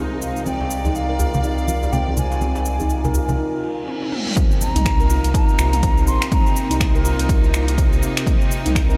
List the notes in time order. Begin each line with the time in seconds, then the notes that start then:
Already playing: C2 C3 G#3 C4 D#4
0.11 C4
0.22 F5, djembe tone, shaker
0.36 shaker
0.46 C4 D5 G5, high conga, shaker
0.60 djembe slap, djembe tone
0.71 shaker
0.85 D#4, djembe tone, high conga, djembe bass, shaker
0.95 F5, shaker
1.09 A#4
1.19 F4, djembe tone, djembe bass, shaker
1.34 high conga, low conga, shaker
1.44 D#4 F5, djembe tone, shaker
1.58 shaker
1.68 F4, high conga, shaker
1.83 djembe tone, shaker
1.92 C4 G5, low conga, shaker
2.07 C4, djembe tone, high conga
2.17 G#5, low conga, shaker
2.32 djembe slap, shaker
2.41 C4, high conga, djembe tone, shaker
2.55 djembe slap, shaker
2.65 djembe tone, shaker
2.80 D#4, high conga, djembe bass, shaker
2.90 shaker
3.04 A#4, djembe tone, low conga, shaker
3.14 F4, djembe bass, shaker
3.29 djembe tone, high conga, low conga, shaker
3.39 D#4, reverse cymbal
3.63 F4
3.88 C4, high tom
4.02 C4, high tom
4.12 mid tom
4.27 mid tom
4.37 C3 A#3 C4 D#4, kick, closed hi-hat, mid tom, impact, shaker
4.51 shaker
4.61 A#5, shaker
4.75 C2 D#4, closed hi-hat, mid tom, shaker
4.85 finger snap, kick, closed hi-hat, shaker
5.00 A#4, shaker
5.10 F4, shaker
5.24 C2, closed hi-hat, shaker
5.34 D#4 A#5, kick, closed hi-hat, shaker
5.49 shaker
5.58 C2 F4, finger snap, shaker
5.73 closed hi-hat, mid tom, shaker
5.83 C4, kick, closed hi-hat, shaker
5.98 C4, shaker
6.07 A#1 C6, shaker
6.22 finger snap, closed hi-hat, shaker
6.32 C4 A#5, kick, closed hi-hat, mid tom, shaker
6.46 shaker
6.56 shaker
6.71 C2 D#4, closed hi-hat, shaker
6.80 finger snap, kick, closed hi-hat, shaker
6.95 A#4, shaker
7.05 F4, shaker
7.19 C2, closed hi-hat, shaker
7.29 C2 D#4, kick, closed hi-hat, shaker
7.44 shaker
7.54 F4, finger snap, shaker
7.68 closed hi-hat, shaker
7.78 C4, kick, closed hi-hat, shaker
7.92 C2 C4, shaker
8.03 shaker
8.17 finger snap, closed hi-hat, shaker
8.27 C4, kick, closed hi-hat, mid tom, shaker
8.41 shaker
8.51 shaker
8.66 C2 D#4, closed hi-hat, mid tom, shaker
8.75 finger snap, kick, closed hi-hat, shaker
8.90 A#4, shaker